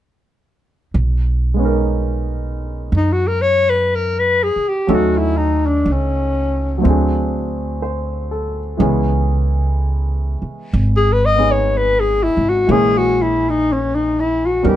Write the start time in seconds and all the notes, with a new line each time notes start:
0.94 B1
1.54 G#3 B3
1.59 C#4 D#4
1.65 A#4
2.92 F#2
2.96 D#4
3.12 F#4
3.27 A#4
3.42 C#5
3.70 B4
3.95 A#4
4.19 B4
4.43 G#4
4.56 muted upright bass stroke
4.68 G4
4.87 D#2 F#3 A3 C#4 D#4 A4
4.94 F#4
5.18 E4
5.37 D#4
5.66 D4
5.86 C#2
5.92 C#4
6.78 F#3 A3
6.83 D2 C4 D4
6.89 G#4
7.82 C5
8.31 A4
8.77 C#2 E3 G#3 B3 C#4
8.82 G#4
10.42 muted upright bass stroke
10.73 G#1
10.96 G#4
11.13 B4
11.25 D#5
11.36 B3 C#4 D#4 G#4
11.51 C#5
11.77 B4
12.00 G#4
12.23 E4
12.37 G#1
12.49 F#4
12.67 A#1 E3 G#3 A#3
12.71 C#4 G#4
12.98 F#4
13.22 E4
13.49 D#4
13.72 C#4
13.95 D#4
14.20 E4
14.46 F#4
14.63 D#2 G3 B3 C#4 D#4 A#4
14.68 G4